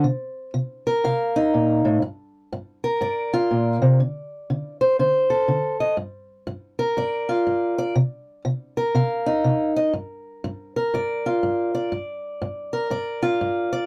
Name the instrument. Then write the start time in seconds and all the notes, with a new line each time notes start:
steel-string acoustic guitar
0.04 C3
0.54 C3
0.87 A#4
1.04 C3 F5
1.36 D#4
1.54 A#2
1.85 A2
2.02 G2
2.53 G2
2.84 A#4
3.01 G2 D5
3.33 F4
3.51 A#2
3.82 C3
4.00 D3
4.50 D3
4.81 C5
4.99 D3 C5
5.30 A4
5.48 D3
5.80 D#5
5.97 G2
6.47 G2
6.79 A#4
6.97 G2 D5
7.29 F4
7.47 G2
7.78 D5
7.95 C3
8.45 C3
8.77 A#4
8.95 C3 F5
9.26 D#4
9.44 C3
9.76 D#5
9.93 G2
10.44 G2
10.76 A#4
10.94 G2 D5
11.26 F4
11.43 G2
11.75 D5
11.92 G2
12.42 G2
12.73 A#4
12.90 G2 D5
13.22 F4
13.41 G2
13.73 D5